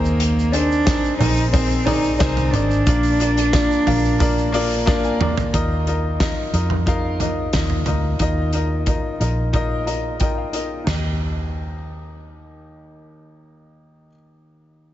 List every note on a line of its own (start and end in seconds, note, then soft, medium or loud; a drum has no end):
0.00 1.00 D#2 loud
0.00 0.83 D#3 medium
0.00 0.54 A#3 loud
0.00 0.39 C4 medium
0.00 0.40 D#4 medium
0.00 0.40 G#4 medium
0.00 0.40 A#4 medium
0.00 0.40 C5 medium
0.05 shaker soft
0.20 hi-hat pedal medium
0.20 open hi-hat loud
0.20 shaker medium
0.39 shaker soft
0.52 0.77 C4 medium
0.52 1.17 D4 loud
0.52 0.78 D#4 medium
0.52 0.78 G#4 medium
0.52 0.78 A#4 medium
0.52 0.78 C5 medium
0.52 hi-hat pedal medium
0.52 open hi-hat medium
0.72 shaker soft
0.85 1.11 C4 medium
0.85 1.11 D#4 medium
0.85 1.11 G#4 medium
0.85 1.11 A#4 medium
0.85 1.12 C5 medium
0.85 kick loud
0.85 snare loud
0.85 hi-hat pedal medium
0.85 open hi-hat medium
0.85 shaker medium
1.04 shaker medium
1.18 2.16 A#1 medium
1.18 1.44 C4 medium
1.18 1.50 D#4 loud
1.18 1.44 D#4 medium
1.18 1.45 G#4 medium
1.18 1.45 A#4 medium
1.18 1.45 C5 medium
1.18 floor tom medium
1.18 hi-hat pedal medium
1.18 open hi-hat medium
1.36 shaker medium
1.51 1.87 C4 loud
1.51 1.78 C4 medium
1.51 1.78 D#4 medium
1.51 1.78 G#4 medium
1.51 1.78 A#4 medium
1.51 1.78 C5 loud
1.51 kick loud
1.51 hi-hat pedal medium
1.51 open hi-hat loud
1.51 shaker medium
1.70 shaker medium
1.85 2.11 C4 loud
1.85 2.17 D#4 loud
1.85 2.11 D#4 medium
1.85 2.11 G#4 medium
1.85 2.11 A#4 medium
1.85 2.12 D5 loud
1.85 floor tom medium
1.85 hi-hat pedal medium
1.85 open hi-hat medium
1.85 shaker medium
2.04 shaker medium
2.18 2.52 C2 medium
2.18 2.44 C4 loud
2.18 2.53 D#4 loud
2.18 2.45 D#4 medium
2.18 2.45 G#4 loud
2.18 2.45 A#4 loud
2.18 2.45 C5 loud
2.18 kick loud
2.18 snare loud
2.18 hi-hat pedal medium
2.18 open hi-hat medium
2.18 shaker medium
2.37 floor tom medium
2.37 shaker medium
2.51 2.84 G#1 medium
2.51 2.78 C4 medium
2.51 4.86 D4 loud
2.51 2.78 D#4 medium
2.51 2.78 G#4 medium
2.51 2.78 A#4 medium
2.51 2.79 D5 medium
2.51 floor tom medium
2.51 hi-hat pedal medium
2.51 open hi-hat medium
2.71 shaker soft
2.86 3.66 A#1 loud
2.86 3.83 A#2 medium
2.86 3.11 A#3 medium
2.86 3.11 D4 medium
2.86 3.11 F4 medium
2.86 3.12 A#4 medium
2.86 3.12 D5 loud
2.86 kick loud
2.86 hi-hat pedal medium
2.86 open hi-hat loud
2.86 shaker medium
3.03 open hi-hat medium
3.03 shaker medium
3.20 3.44 A#3 medium
3.20 3.45 D4 medium
3.20 3.45 F4 medium
3.20 3.45 A#4 medium
3.20 3.45 D5 medium
3.20 hi-hat pedal medium
3.20 open hi-hat medium
3.37 hi-hat pedal medium
3.37 shaker soft
3.53 3.78 A#3 medium
3.53 3.77 D4 medium
3.53 3.78 F4 medium
3.53 3.78 A#4 medium
3.53 3.78 D5 loud
3.53 kick loud
3.53 snare loud
3.53 hi-hat pedal medium
3.53 open hi-hat medium
3.53 shaker medium
3.71 shaker medium
3.86 5.50 A#1 medium
3.86 4.11 A#3 medium
3.86 4.11 D4 medium
3.86 4.12 F4 medium
3.86 4.11 A#4 medium
3.86 4.12 F5 loud
3.86 floor tom medium
3.86 hi-hat pedal medium
3.86 open hi-hat medium
4.05 shaker medium
4.19 4.44 A#3 medium
4.19 4.44 D4 medium
4.19 4.45 F4 medium
4.19 4.45 A#4 medium
4.19 4.45 D5 loud
4.19 kick loud
4.19 hi-hat pedal medium
4.19 open hi-hat medium
4.19 shaker medium
4.38 shaker medium
4.52 4.77 A#3 loud
4.52 4.78 D4 loud
4.52 4.78 F4 loud
4.52 4.78 A#4 loud
4.52 4.79 D5 loud
4.52 hi-hat pedal medium
4.52 open hi-hat medium
4.52 shaker medium
4.71 open hi-hat medium
4.71 shaker medium
4.86 5.11 A#3 loud
4.86 5.11 D4 loud
4.86 5.11 F4 loud
4.86 5.12 A#4 loud
4.86 5.12 D5 loud
4.86 5.02 F5 medium
4.86 kick loud
4.86 snare medium
4.86 shaker medium
5.04 5.20 G#5 medium
5.04 shaker medium
5.20 5.45 A#3 medium
5.20 5.45 D4 medium
5.20 5.45 F4 medium
5.20 5.45 A#4 medium
5.20 5.46 D5 loud
5.20 5.52 A#5 medium
5.20 mid tom medium
5.37 floor tom loud
5.37 shaker soft
5.53 6.33 D#2 medium
5.53 6.50 D#3 medium
5.53 5.78 D#4 loud
5.53 5.78 F4 medium
5.53 5.78 A#4 medium
5.53 5.79 D#5 loud
5.53 kick loud
5.53 closed hi-hat loud
5.87 6.11 D#4 medium
5.87 6.12 F4 medium
5.87 6.12 A#4 medium
5.87 6.12 D#5 medium
5.87 closed hi-hat medium
6.20 6.44 D#4 medium
6.20 6.45 F4 medium
6.20 6.45 A#4 medium
6.20 6.45 D#5 medium
6.20 kick medium
6.20 snare medium
6.20 closed hi-hat medium
6.53 7.50 F2 medium
6.53 6.78 D#4 medium
6.53 6.78 F4 medium
6.53 6.78 A#4 medium
6.53 6.79 D#5 medium
6.53 closed hi-hat medium
6.70 floor tom medium
6.86 7.11 D#4 loud
6.86 7.11 F4 medium
6.86 7.12 A#4 medium
6.86 7.12 F5 loud
6.86 kick medium
6.86 closed hi-hat medium
7.20 7.45 D#4 medium
7.20 7.45 F4 medium
7.20 7.45 A#4 medium
7.20 7.45 D#5 medium
7.20 closed hi-hat medium
7.20 floor tom soft
7.53 7.85 D#2 medium
7.53 7.78 D#4 medium
7.53 7.79 F4 medium
7.53 7.79 A#4 medium
7.53 7.79 D#5 medium
7.53 kick medium
7.53 snare loud
7.53 closed hi-hat medium
7.70 floor tom medium
7.86 8.18 D2 medium
7.86 8.11 D#4 medium
7.86 8.12 F4 medium
7.86 8.12 A#4 medium
7.86 8.12 D#5 medium
7.86 closed hi-hat medium
7.86 floor tom medium
8.19 9.00 D#2 medium
8.19 9.17 D#3 medium
8.19 8.45 D#4 medium
8.19 8.45 F4 medium
8.19 8.45 A#4 medium
8.19 8.46 D#5 loud
8.19 kick medium
8.19 closed hi-hat medium
8.53 8.78 D#4 medium
8.53 8.78 F4 medium
8.53 8.79 A#4 medium
8.53 8.79 D#5 medium
8.53 closed hi-hat medium
8.86 9.11 D#4 medium
8.86 9.12 F4 medium
8.86 9.12 A#4 medium
8.86 9.12 D#5 medium
8.86 kick medium
8.86 closed hi-hat medium
9.20 10.83 A#1 medium
9.20 9.45 D#4 medium
9.20 9.45 F4 medium
9.20 9.46 A#4 medium
9.20 9.46 D#5 medium
9.20 closed hi-hat medium
9.53 9.78 D#4 medium
9.53 9.78 F4 medium
9.53 9.79 A#4 medium
9.53 9.79 D#5 loud
9.53 kick medium
9.53 closed hi-hat medium
9.86 10.11 D#4 medium
9.86 10.11 F4 medium
9.86 10.12 A#4 medium
9.86 10.12 D#5 medium
9.86 10.18 A#5 medium
9.86 closed hi-hat medium
10.20 10.45 D#4 medium
10.20 10.45 F4 medium
10.20 10.45 A#4 medium
10.20 10.46 D#5 medium
10.20 10.36 G5 medium
10.20 kick medium
10.20 closed hi-hat medium
10.38 10.84 F5 medium
10.53 10.78 D#4 medium
10.53 10.78 F4 medium
10.53 10.78 A#4 medium
10.53 10.79 D#5 medium
10.53 closed hi-hat medium
10.84 14.08 D#2 medium
10.84 14.09 D#2 medium
10.84 14.05 D#4 medium
10.84 14.08 G4 medium
10.84 snare medium
10.84 floor tom medium
10.84 china medium
10.89 14.10 A#4 medium
10.89 14.12 D#5 medium